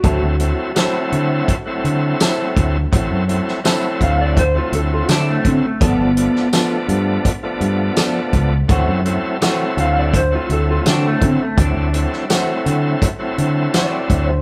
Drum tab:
HH |x-x-x-x-x-x-x-x-|x-x-x-x-x-x-x-x-|x-x-x-x-x-x-x-x-|x-x-x-x-x-x-x-x-|
TB |----x-------x---|----x-------x---|----x-------x---|----x-------x---|
SD |----o-------o---|---oo-------o---|---oo-------o---|----o-------o---|
BD |o-------o-----o-|o-----o-o-----o-|o-------o-----o-|o-------o-----o-|

HH |x-x-x-x-x-x-x-x-|
TB |----x-------x---|
SD |---oo-------o---|
BD |o-------o-----o-|